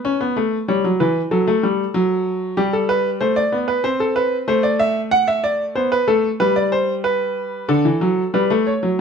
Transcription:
Already playing: B4
0.05 C#4
0.21 B3
0.36 A3
0.68 G3 C#5
0.84 F#3
1.00 E3 B4
1.31 F#3 A4
1.47 A3
1.63 G3
1.94 F#3
2.57 G3 G4
2.73 A4
2.89 B4
3.21 A3 C5
3.36 D5
3.52 B3
3.68 B4
3.84 C4 C5
4.00 A4
4.16 B4
4.48 A3 C5
4.63 D5
4.79 E5
5.11 F#5
5.28 E5
5.44 D5
5.75 B3 C5
5.92 B4
6.08 A3 A4
6.40 G3 B4
6.56 D5
6.72 C5
7.04 B4
7.68 D3 A4
7.85 E3
8.01 F#3
8.34 G3 B4
8.50 A3
8.67 C#5
8.83 F#3

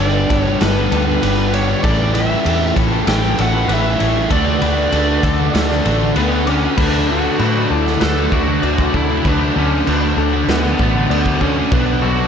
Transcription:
Already playing: G2 B3 D4 D5
0.00 G1 D3 G3 B3 D4 G4 A4 D5
0.14 G3 B3 D4 G4
0.29 G1 G2 D3 G3 B3 D4 A4, muted overdriven electric guitar stroke, kick, ride
0.41 C#5
0.46 G3 B3 D4 G4, muted distorted electric guitar stroke
0.60 G1 G2 D3 G3 B3 D4 A4 B4, snare, ride
0.75 D3 G3
0.91 D2 G2 D3 G3 B3 D4 A4, ride
0.95 G4
1.07 G3 B3 D4 G4, muted distorted electric guitar stroke
1.22 G1 G2 D3 G3 B3 D4 G4 B4, ride
1.38 G3 B3 D4 G4
1.52 G2 D3 G3 B3 D4 C#5, ride
1.56 G4
1.68 D3 G3 B3 D4 G4
1.72 G3
1.84 A1 A2 E3 G3 A3 C#4 E4 G4 A4 D5, kick, ride
2.14 A2 E3 G3 A3 C#4 E4 B4 E5, ride
2.18 G4
2.30 E3 A3
2.45 E2 A2 E3 G3 A3 C#4 E4 A4, ride
2.49 G4
2.61 G3 C#4 G4
2.76 A1 A2 E3 A3 C#4 E4 A4, muted overdriven electric guitar stroke, kick, ride
2.91 G3 C#4 G4, muted distorted electric guitar stroke
3.07 A1 A2 E3 A3 C#4 E4 A4 G5, snare, ride
3.23 E3 A3
3.37 A1 A2 E3 G3 A3 C#4 E4 G4 A4 F#5, ride
3.52 G3 C#4 G4, muted distorted electric guitar stroke
3.68 A1 A2 E3 G3 A3 C#4 E4 G4 B4, ride
3.73 E5
3.84 G3 C#4 G4
3.99 A1 A2 E3 G3 A3 C#4 E4 G4 C#5, ride
4.15 E3 G3 A3 C#4 G4
4.30 D2 D3 A3 D4 F#4 A4 D5, kick, ride
4.62 D2 D3 A3 D4 F#4 B4, ride
4.77 A3 D4
4.92 D2 D3 A3 D4 F#4 A4, ride
5.08 A3 D4 F#4
5.23 D2 D3 A3 D4 F#4 A4, muted overdriven electric guitar stroke, kick, ride
5.39 A3 D4 F#4, muted distorted electric guitar stroke
5.54 D2 D3 A3 D4 F#4 A4, snare, ride
5.70 A3 D4, snare
5.85 A1 D3 A3 D4 F#4 A4, ride
6.00 A3 D4 F#4, muted distorted electric guitar stroke
6.16 D2 D3 A3 B3 D4 F#4 B4, ride
6.32 A3 D4 F#4
6.47 D3 A3 C#4 D4 D6, ride
6.51 F#4
6.64 A3 D4 F#4
6.77 D2 D3 F#3 A3 D4 B4, kick, crash
6.81 F#4
7.09 D3 F#3 A3 D4 F#4 A4
7.13 F#4
7.24 A3 D4
7.39 A2 D3 F#3 A3 D4 B4, crash
7.44 F#4
7.56 A3 D4 F#4
7.70 D2 D3 F#3 A3 D4 A4, muted overdriven electric guitar stroke
7.78 E4
7.86 A3 D4 F#4, muted distorted electric guitar stroke, snare
8.01 D2 D3 F#3 A3 D4 A4 B4, snare, crash
8.16 A3 D4
8.32 D2 D3 F#3 A3 D4 F#4 D5, kick
8.47 A3 D4 F#4, muted distorted electric guitar stroke
8.62 D2 D3 F#3 A3 D4 F#4 D5, crash
8.78 A3 D4 F#4, kick
8.94 D2 D3 F#3 A3 D4 E4 F#4 A4, kick
9.09 A3 D4 F#4
9.24 D2 D3 F#3 A3 D4 F#4 B4, kick, crash
9.56 D2 D3 F#3 A3 C#4 D4 F#4 A4
9.72 A3 D4
9.86 D2 D3 F#3 A3 D4 F#4 B4, crash
10.02 A3 D4 F#4
10.17 D2 D3 F#3 A3 D4 A4, muted overdriven electric guitar stroke
10.33 A3 D4 F#4, muted distorted electric guitar stroke
10.48 D2 D3 F#3 A3 B3 D4 B4, snare, crash
10.64 A3 D4
10.79 A1 D3 F#3 A3 D4 F#4 D5, kick
10.94 D4 F#4, muted distorted electric guitar stroke
10.98 A3
11.09 D2 D3 F#3 A3 B3 D4 D5, crash
11.14 F#4
11.26 A3 D4 F#4, kick
11.41 D3 F#3 A3 C#4 D4 F#4 A4, kick
11.57 A3 D4 F#4
11.71 B1 B2 F#3 B3 D4 F#4 B4, kick, crash
12.02 B2 F#3 B3 D4 F#4 A4
12.06 F#4
12.19 F#3 B3

